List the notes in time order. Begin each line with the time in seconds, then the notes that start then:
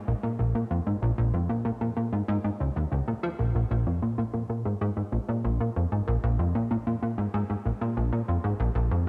0.08 A#1
0.23 A#2
0.39 A#1
0.55 A#2
0.71 F2
0.87 G#2
1.02 A#1
1.18 A#1
1.34 F2
1.49 A#2
1.65 A#2
1.81 A#2
1.97 A#2
2.13 G#2
2.28 G#2
2.44 G#2
2.60 C#2
2.76 D#2
2.92 C#2
3.08 A#2
3.23 F3
3.39 A#1
3.55 A#1
3.71 A#1
3.87 F2
4.02 A#2
4.18 A#2
4.33 A#2
4.49 A#2
4.65 G#2
4.81 G#2
4.97 G#2
5.12 A#1
5.28 A#2
5.44 A#1
5.60 A#2
5.76 F2
5.92 G#2
6.08 A#1
6.24 A#1
6.39 F2
6.55 A#2
6.71 A#2
6.87 A#2
7.03 A#2
7.18 G#2
7.34 G#2
7.50 G#2
7.65 A#1
7.81 A#2
7.97 A#1
8.13 A#2
8.28 F2
8.44 G#2
8.60 A#1
8.75 A#1
8.91 F2